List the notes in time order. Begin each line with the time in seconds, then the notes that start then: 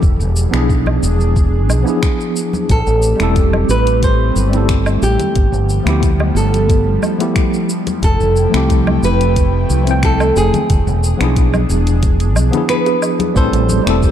0.02 E1 D4 G#4, kick, low conga, shaker
0.20 E1, shaker
0.36 shaker
0.49 B1 F3 B3 D4
0.54 E4 G#4, finger snap, shaker
0.69 kick, shaker
0.86 high conga, low woodblock
1.03 E1, shaker
1.20 shaker
1.36 kick, shaker
1.69 B1, high conga, low woodblock, shaker
1.82 F3 B3 D4
1.87 E4 G#4, shaker
2.03 finger snap, kick, shaker
2.21 shaker
2.36 shaker
2.53 high conga, shaker
2.69 A1 A3 C4 G4 A4, kick, closed hi-hat, shaker
2.87 A1, shaker
3.02 shaker
3.16 E1 G3 A3 C4, finger snap, closed hi-hat, shaker
3.22 E4 A4
3.36 kick, closed hi-hat, shaker
3.53 high conga, low woodblock
3.69 A1 B4, shaker
3.87 closed hi-hat, shaker
4.03 C5, kick, closed hi-hat, shaker
4.36 G1, high conga, shaker
4.49 G3 A3 C4
4.53 E4 A4, closed hi-hat, shaker
4.69 finger snap, kick, closed hi-hat, shaker
4.86 low woodblock, shaker
5.02 A1 G4, high bongo, shaker
5.19 closed hi-hat, high conga, low conga, shaker
5.36 G1 F3 G3 B3, kick, closed hi-hat, low conga, shaker
5.52 G1, shaker
5.69 shaker
5.83 D2 F3 A3 B3, finger snap, closed hi-hat
5.87 E4 G4, shaker
6.03 kick, closed hi-hat, shaker
6.20 high conga, low woodblock
6.35 G1 A4, high bongo, shaker
6.54 closed hi-hat, shaker
6.69 kick, closed hi-hat, shaker
7.02 high conga, low woodblock, shaker
7.18 F3 A3 B3 E4 G4, closed hi-hat, high bongo, shaker
7.36 finger snap, kick, closed hi-hat, shaker
7.54 shaker
7.69 F3 A3 E4 G5, shaker
7.87 closed hi-hat, high bongo, high conga, shaker
8.03 F1 A4, kick, closed hi-hat, shaker
8.20 F1, shaker
8.36 shaker
8.50 C2 F3 A3 C4
8.54 E4 G4, finger snap, closed hi-hat, shaker
8.70 kick, closed hi-hat, shaker
8.87 high conga, low woodblock
9.03 F1 B4, shaker
9.21 closed hi-hat, shaker
9.36 kick, closed hi-hat, shaker
9.70 C2, high conga, shaker
9.84 F3 A3 C4, closed hi-hat, shaker
9.89 E4 G5
10.03 A4, finger snap, kick, closed hi-hat, shaker
10.20 low woodblock, shaker
10.36 F1 G#4, high bongo, shaker
10.54 closed hi-hat, high conga, low conga, shaker
10.69 E1 D4 G#4, kick, closed hi-hat, low conga, shaker
10.87 E1, shaker
11.04 shaker
11.17 B1 F3 B3 D4, finger snap, closed hi-hat, shaker
11.22 E4 G#4
11.36 kick, closed hi-hat, shaker
11.54 high conga, low woodblock, shaker
11.69 E1, high bongo, shaker
11.87 closed hi-hat, shaker
12.03 kick, closed hi-hat, shaker
12.20 closed hi-hat, shaker
12.36 B1, high conga, low woodblock, shaker
12.50 F3 B3 D4, closed hi-hat, high bongo, low conga, shaker
12.55 E4 G#4
12.69 B4, finger snap, closed hi-hat, shaker
12.86 closed hi-hat, high bongo, shaker
13.02 low woodblock, shaker
13.20 closed hi-hat, high bongo, high conga, shaker
13.34 A1 G3 A3 C4 E4 G4 A4 C5, kick, shaker
13.53 A1, closed hi-hat, shaker
13.69 high conga, shaker
13.83 E1 G3 A3 C4, finger snap, closed hi-hat
13.87 E4 A4, shaker
14.03 kick, shaker